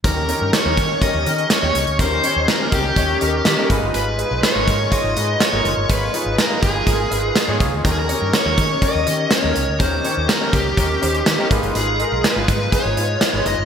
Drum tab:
HH |x-x-x-x-x-xxx-xx|x-x-x-x-x-x-x-x-|x-x-x-x-x-x-x-x-|x-x-x-x-x-x-x-x-|
SD |----o-------o---|----o-------o---|----o-------o---|----o-------o---|
BD |o-----o-o-------|o-----o-o-----o-|------o-o-------|o-----o-o-----o-|

HH |x-x-x-x-x-x-x-x-|x-x-x-x-x-xxx-xx|x-x-x-x-x-x-x-x-|
SD |----o-------o---|----o-------o---|----o-------o---|
BD |o-----o-o-------|o-----o-o-----o-|------o-o-------|